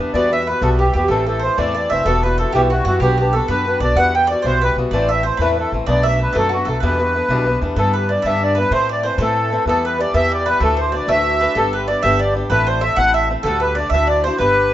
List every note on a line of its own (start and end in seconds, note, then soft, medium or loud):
0.00 0.10 E2 medium
0.00 0.13 E3 medium
0.00 0.14 G3 medium
0.00 0.14 B3 medium
0.00 0.15 D4 medium
0.14 0.52 E2 medium
0.14 0.30 E3 medium
0.14 0.31 G3 medium
0.14 0.31 B3 medium
0.14 0.32 F#4 medium
0.14 0.32 D5 loud
0.14 0.33 D5 medium
0.31 0.46 E3 medium
0.31 0.47 G3 medium
0.31 0.47 B3 soft
0.31 0.48 F#4 medium
0.31 0.48 E5 medium
0.31 0.47 E5 medium
0.47 0.61 E3 soft
0.47 0.61 G3 soft
0.47 0.62 B3 medium
0.47 0.62 F#4 medium
0.47 0.63 B4 medium
0.47 0.61 B4 medium
0.62 0.87 B1 loud
0.62 0.78 E3 medium
0.62 0.79 G3 medium
0.62 0.80 B3 medium
0.62 0.80 F#4 medium
0.62 0.70 A4 medium
0.62 0.80 A4 medium
0.79 0.94 E3 soft
0.79 0.95 G3 medium
0.79 0.95 B3 soft
0.79 0.96 F#4 medium
0.79 0.92 G4 medium
0.79 0.94 G4 medium
0.93 1.07 E2 medium
0.93 1.10 E3 medium
0.93 1.11 G3 medium
0.93 1.11 B3 medium
0.93 1.11 F#4 medium
0.93 1.08 G4 medium
0.93 1.09 G4 medium
1.08 1.47 A1 medium
1.08 1.27 A2 medium
1.08 1.26 E3 medium
1.08 1.28 A3 medium
1.08 1.27 C4 medium
1.08 1.28 E4 medium
1.08 1.25 A4 medium
1.08 1.26 A4 loud
1.26 1.42 E3 soft
1.26 1.43 A3 soft
1.26 1.42 C4 medium
1.26 1.43 E4 medium
1.26 1.39 A4 medium
1.26 1.43 A4 medium
1.39 1.57 E3 medium
1.39 1.57 C4 soft
1.39 1.57 C5 medium
1.39 1.58 C5 medium
1.44 1.57 A3 medium
1.44 1.58 E4 medium
1.58 1.84 E2 loud
1.58 1.75 A2 medium
1.58 1.74 E3 medium
1.58 1.75 A3 medium
1.58 1.74 C4 medium
1.58 1.75 E4 medium
1.58 1.73 D5 medium
1.58 1.92 D5 loud
1.75 1.89 E3 soft
1.75 1.91 A3 medium
1.75 1.90 C4 medium
1.75 1.91 E4 medium
1.75 1.91 D5 medium
1.90 2.03 F#1 medium
1.90 2.05 E3 medium
1.90 2.06 A3 medium
1.90 2.06 C4 medium
1.90 2.06 E4 medium
1.90 2.04 E5 medium
1.90 2.06 E5 medium
2.05 2.43 E1 medium
2.05 2.23 E3 medium
2.05 2.23 G3 medium
2.05 2.23 B3 medium
2.05 2.24 E4 medium
2.05 2.24 F#4 medium
2.05 2.23 A4 loud
2.05 2.23 A4 medium
2.23 2.38 G3 medium
2.23 2.38 B3 medium
2.23 2.39 E4 medium
2.23 2.40 F#4 medium
2.23 2.37 B4 medium
2.38 2.54 G3 medium
2.38 2.54 B3 medium
2.38 2.55 E4 medium
2.38 2.55 F#4 medium
2.38 2.54 A4 medium
2.38 2.52 A4 medium
2.52 2.79 B1 medium
2.52 2.71 E3 medium
2.52 2.70 G3 medium
2.52 2.71 B3 medium
2.52 2.72 E4 medium
2.52 2.72 F#4 loud
2.52 2.69 G4 medium
2.52 2.61 G4 loud
2.70 2.86 G3 medium
2.70 2.86 B3 soft
2.70 2.87 E4 soft
2.70 2.84 F#4 medium
2.70 2.85 F#4 medium
2.70 2.88 F#4 medium
2.85 2.98 F#2 medium
2.85 3.01 G3 medium
2.85 3.00 B3 medium
2.85 3.02 E4 medium
2.85 2.99 F#4 medium
2.85 3.00 F#4 loud
2.85 3.02 F#4 medium
3.00 3.38 B1 loud
3.00 3.18 B3 medium
3.00 3.19 D4 medium
3.00 3.19 F#4 medium
3.00 3.17 G4 medium
3.00 3.18 G4 loud
3.00 3.19 B4 medium
3.18 3.33 B3 soft
3.18 3.34 D4 medium
3.18 3.35 F#4 medium
3.18 3.34 G4 medium
3.18 3.35 B4 medium
3.33 3.48 B3 soft
3.33 3.49 D4 soft
3.33 3.49 F#4 medium
3.33 3.47 A4 medium
3.33 3.49 A4 medium
3.33 3.49 B4 medium
3.48 3.74 F#2 medium
3.48 3.66 B3 medium
3.48 3.66 D4 medium
3.48 3.67 F#4 medium
3.48 3.79 B4 medium
3.48 3.80 B4 loud
3.48 3.67 B4 medium
3.67 3.81 B3 soft
3.67 3.81 D4 medium
3.67 3.82 F#4 medium
3.67 3.83 B4 medium
3.80 3.93 B1 medium
3.80 3.96 B3 medium
3.80 3.97 D4 medium
3.80 3.97 F#4 medium
3.80 3.97 D5 medium
3.80 3.98 D5 loud
3.84 3.98 B4 medium
3.95 4.33 E2 loud
3.95 4.13 E3 medium
3.95 4.14 G3 medium
3.95 4.14 B3 medium
3.95 4.15 F#4 medium
3.95 4.13 F#5 medium
3.95 4.15 F#5 loud
4.15 4.29 E3 medium
4.15 4.30 G3 medium
4.15 4.30 B3 medium
4.15 4.30 F#4 medium
4.15 4.29 G5 medium
4.15 4.29 G5 loud
4.27 4.44 E3 medium
4.27 4.45 G3 soft
4.27 4.42 D5 medium
4.27 4.45 D5 medium
4.32 4.45 B3 medium
4.32 4.46 F#4 medium
4.42 4.70 B1 medium
4.42 4.61 E3 medium
4.42 4.62 G3 medium
4.42 4.62 B3 medium
4.42 4.59 C5 medium
4.47 4.63 F#4 medium
4.47 4.63 C5 loud
4.61 4.76 E3 medium
4.61 4.77 G3 medium
4.61 4.77 B3 medium
4.61 4.78 F#4 medium
4.61 4.76 B4 medium
4.61 4.77 B4 medium
4.76 4.88 B1 medium
4.76 4.92 E3 medium
4.76 4.93 G3 medium
4.76 4.93 B3 medium
4.76 4.93 F#4 medium
4.91 5.29 A1 medium
4.91 5.10 A2 medium
4.91 5.08 E3 medium
4.91 5.09 A3 medium
4.91 5.10 C4 medium
4.91 5.10 E4 medium
4.91 5.07 D5 medium
4.91 5.11 D5 medium
5.09 5.23 E3 medium
5.09 5.24 A3 medium
5.09 5.25 C4 medium
5.09 5.25 E4 medium
5.09 5.23 E5 medium
5.09 5.26 E5 medium
5.23 5.39 E3 medium
5.23 5.40 A3 soft
5.23 5.40 C4 soft
5.23 5.40 E4 medium
5.23 5.37 C5 medium
5.23 5.41 C5 medium
5.37 5.65 E2 medium
5.37 5.57 A2 medium
5.37 5.56 E3 medium
5.37 5.68 B4 medium
5.41 5.57 A3 medium
5.41 5.58 C4 medium
5.41 5.58 E4 medium
5.41 5.52 B4 medium
5.53 5.72 E3 medium
5.53 5.57 B4 medium
5.58 5.72 A3 medium
5.58 5.73 C4 medium
5.58 5.73 E4 medium
5.58 5.72 A4 medium
5.72 5.84 A1 medium
5.72 5.87 E3 medium
5.72 5.87 A3 medium
5.72 5.88 C4 medium
5.72 5.88 E4 medium
5.86 6.25 B1 loud
5.86 6.04 B2 medium
5.86 6.04 F#3 medium
5.86 6.05 A3 medium
5.86 6.05 B3 medium
5.86 6.05 D4 medium
5.86 6.03 D5 medium
5.86 6.06 D5 loud
6.03 6.18 F#3 medium
6.03 6.18 A3 medium
6.03 6.19 B3 medium
6.03 6.32 E5 medium
6.03 6.20 E5 loud
6.07 6.20 D4 medium
6.19 6.33 F#3 soft
6.19 6.34 A3 medium
6.19 6.34 B3 soft
6.19 6.34 D4 medium
6.19 6.37 B4 medium
6.33 6.61 F#2 loud
6.33 6.51 B2 medium
6.33 6.50 F#3 medium
6.33 6.51 A3 medium
6.33 6.52 B3 medium
6.33 6.52 D4 medium
6.33 6.51 A4 medium
6.37 6.52 A4 loud
6.49 6.66 F#3 medium
6.49 6.66 A3 medium
6.49 6.67 B3 medium
6.49 6.66 F#4 medium
6.53 6.68 D4 medium
6.53 6.68 F#4 medium
6.65 6.79 B1 medium
6.65 6.82 F#3 medium
6.65 6.83 A3 medium
6.65 6.82 B3 medium
6.65 6.83 D4 medium
6.65 6.80 A4 medium
6.65 6.82 A4 medium
6.80 7.00 E2 medium
6.80 7.20 E2 loud
6.80 7.00 B2 medium
6.80 6.98 E3 medium
6.80 6.98 G3 medium
6.80 6.99 B3 medium
6.80 7.00 D4 medium
6.80 7.57 B4 medium
6.84 7.59 B4 medium
6.99 7.13 E3 medium
6.99 7.14 G3 medium
6.99 7.15 B3 medium
6.99 7.15 D4 medium
7.15 7.29 E3 soft
7.15 7.29 G3 medium
7.15 7.30 B3 medium
7.15 7.29 D4 medium
7.29 7.55 B1 loud
7.29 7.47 E2 medium
7.29 7.47 B2 medium
7.29 7.45 E3 medium
7.29 7.46 G3 medium
7.29 7.47 B3 medium
7.29 7.47 D4 loud
7.46 7.60 E3 medium
7.46 7.61 G3 medium
7.46 7.62 B3 medium
7.46 7.62 D4 medium
7.62 7.74 E2 medium
7.62 7.77 E3 medium
7.62 7.77 G3 medium
7.62 7.78 B3 medium
7.62 7.78 D4 medium
7.76 8.14 G2 loud
7.76 8.10 G2 medium
7.76 8.10 D3 medium
7.76 8.09 E3 medium
7.76 8.09 G3 medium
7.76 8.10 B3 medium
7.76 8.10 D4 medium
7.76 7.93 A4 medium
7.76 7.95 A4 medium
7.93 8.08 B4 medium
7.93 8.11 B4 medium
8.09 8.25 E3 soft
8.09 8.25 G3 medium
8.09 8.25 B3 soft
8.09 8.25 D4 soft
8.09 8.23 D5 medium
8.09 8.26 D5 medium
8.22 8.62 G2 medium
8.22 8.57 G2 medium
8.22 8.57 D3 medium
8.22 8.56 E3 medium
8.22 8.57 G3 medium
8.22 8.57 B3 medium
8.22 8.57 E5 medium
8.22 8.43 E5 loud
8.26 8.58 D4 medium
8.43 8.58 D5 medium
8.55 8.71 E3 medium
8.55 8.72 G3 medium
8.55 8.72 B3 medium
8.55 8.73 D4 medium
8.55 8.70 B4 medium
8.59 8.72 B4 medium
8.71 9.09 A2 loud
8.71 9.04 A2 medium
8.71 9.04 E3 medium
8.71 9.04 A3 medium
8.71 9.04 C4 medium
8.71 9.05 E4 medium
8.71 8.88 C5 medium
8.71 8.89 C5 loud
8.89 9.03 D5 medium
8.89 9.06 D5 medium
9.03 9.19 E3 medium
9.03 9.20 A3 medium
9.03 9.20 C4 medium
9.03 9.20 E4 medium
9.03 9.18 C5 medium
9.03 9.21 C5 medium
9.18 9.56 A2 loud
9.18 9.52 A2 medium
9.18 9.51 E3 medium
9.18 9.52 A3 medium
9.18 9.51 C4 medium
9.18 9.53 E4 medium
9.18 9.63 A4 medium
9.18 9.65 A4 medium
9.51 9.66 E3 medium
9.51 9.67 A3 medium
9.51 9.67 C4 medium
9.51 9.68 E4 medium
9.66 10.03 E2 medium
9.66 9.97 E3 medium
9.66 9.98 G3 medium
9.66 9.99 B3 medium
9.66 10.00 G4 medium
9.66 9.85 A4 loud
9.66 9.84 A4 medium
9.85 10.00 B4 medium
9.98 10.13 E3 medium
9.98 10.13 G3 medium
9.98 10.14 B3 soft
9.98 10.15 G4 medium
9.98 10.14 D5 medium
9.98 10.15 D5 medium
10.14 10.51 E2 loud
10.14 10.44 E3 medium
10.14 10.45 G3 medium
10.14 10.46 B3 medium
10.14 10.46 G4 medium
10.14 10.30 E5 medium
10.14 10.32 E5 loud
10.32 10.45 D5 medium
10.32 10.48 D5 medium
10.45 10.60 E3 medium
10.45 10.61 G3 medium
10.45 10.61 B3 medium
10.45 10.62 G4 medium
10.45 10.60 B4 medium
10.45 10.63 B4 loud
10.60 10.98 D2 loud
10.60 10.93 D2 medium
10.60 10.93 A2 medium
10.60 10.92 E3 medium
10.60 10.93 A3 medium
10.60 10.93 D4 medium
10.60 10.94 F#4 medium
10.60 10.76 A4 medium
10.60 10.80 A4 loud
10.77 10.92 C5 medium
10.77 10.95 C5 medium
10.92 11.07 E3 medium
10.92 11.07 A3 soft
10.92 11.08 D4 medium
10.92 11.08 F#4 medium
10.92 11.07 D5 medium
10.92 11.10 D5 medium
11.08 11.45 D2 medium
11.08 11.40 D2 medium
11.08 11.40 A2 medium
11.08 11.40 E3 medium
11.08 11.40 A3 medium
11.08 11.41 D4 medium
11.08 11.41 F#4 medium
11.08 11.42 E5 loud
11.08 11.58 E5 loud
11.41 11.55 E3 medium
11.41 11.56 A3 medium
11.41 11.56 D4 medium
11.41 11.56 F#4 medium
11.41 11.55 B4 medium
11.55 11.93 G1 medium
11.55 11.87 G3 medium
11.55 11.88 B3 medium
11.55 11.88 D4 medium
11.55 11.88 G4 medium
11.55 11.71 A4 medium
11.55 11.74 A4 loud
11.73 11.87 B4 medium
11.88 12.02 G3 soft
11.88 12.04 B3 soft
11.88 12.04 D4 soft
11.88 12.04 G4 soft
11.88 12.03 D5 medium
11.88 12.02 D5 medium
12.03 12.40 G1 loud
12.03 12.34 G3 medium
12.03 12.34 B3 medium
12.03 12.35 D4 medium
12.03 12.35 G4 loud
12.03 12.19 E5 loud
12.03 12.21 E5 loud
12.19 12.34 D5 medium
12.35 12.50 G3 medium
12.35 12.50 B3 medium
12.35 12.51 D4 medium
12.35 12.51 G4 medium
12.50 12.87 A1 loud
12.50 12.82 A2 medium
12.50 12.80 A3 medium
12.50 12.81 C4 medium
12.50 12.82 E4 medium
12.50 12.82 A4 medium
12.50 12.66 B4 medium
12.50 12.68 B4 loud
12.67 12.81 C5 medium
12.67 12.84 C5 medium
12.81 12.97 A3 medium
12.81 12.97 C4 medium
12.81 12.97 E4 medium
12.81 12.98 A4 medium
12.81 12.96 E5 loud
12.81 12.98 E5 loud
12.96 13.34 A1 loud
12.96 13.30 A2 medium
12.96 13.29 A3 medium
12.96 13.30 C4 medium
12.96 13.30 E4 medium
12.96 13.30 A4 medium
12.96 13.13 F#5 loud
12.96 13.14 F#5 loud
13.14 13.28 E5 medium
13.14 13.29 E5 loud
13.30 13.45 A3 medium
13.30 13.45 C4 medium
13.30 13.45 E4 medium
13.30 13.46 A4 medium
13.43 13.81 D2 loud
13.43 13.77 D2 medium
13.43 13.77 A2 medium
13.43 13.76 D3 medium
13.43 13.76 G3 medium
13.43 13.77 A3 medium
13.43 13.60 A4 medium
13.43 13.62 A4 loud
13.43 13.77 A4 medium
13.60 13.75 B4 medium
13.60 13.77 B4 medium
13.75 13.92 D3 medium
13.75 13.92 G3 soft
13.75 13.93 A3 medium
13.75 13.93 A4 medium
13.75 13.90 D5 medium
13.75 13.91 D5 medium
13.90 14.28 D2 medium
13.90 14.24 D2 medium
13.90 14.25 A2 medium
13.90 14.06 E5 medium
13.90 14.08 E5 loud
13.94 14.25 D3 medium
13.94 14.26 D4 medium
13.94 14.25 E4 medium
13.94 14.25 F#4 medium
14.07 14.22 D5 medium
14.07 14.24 D5 loud
14.23 14.39 D3 medium
14.23 14.40 D4 medium
14.23 14.40 E4 medium
14.23 14.41 F#4 medium
14.23 14.38 C5 medium
14.39 14.74 G1 loud
14.39 14.71 G3 medium
14.39 14.71 B3 medium
14.39 14.72 D4 medium
14.39 14.72 G4 medium
14.39 14.74 B4 medium
14.39 14.74 B4 loud